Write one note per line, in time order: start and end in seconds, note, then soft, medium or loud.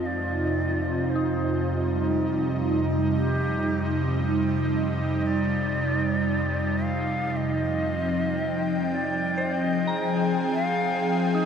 0.00 7.35 F2 medium
0.00 2.32 C4 medium
0.00 9.06 D#4 medium
0.00 2.32 F4 medium
0.06 1.11 D5 medium
0.17 7.35 C3 medium
1.10 2.12 C5 medium
1.15 3.64 D#4 medium
1.56 7.35 G3 medium
3.15 4.15 G4 medium
4.75 5.28 D#5 medium
5.27 6.86 D5 medium
6.84 7.38 F5 medium
7.34 11.45 F3 medium
7.34 8.96 D#5 medium
7.51 11.45 C4 medium
8.16 11.45 G5 medium
8.94 9.49 D5 medium
9.38 11.45 C5 medium
9.47 10.25 D#5 medium
9.62 11.45 G#4 medium
9.87 11.45 A#5 medium
10.53 11.27 F5 medium
11.35 11.45 D#4 medium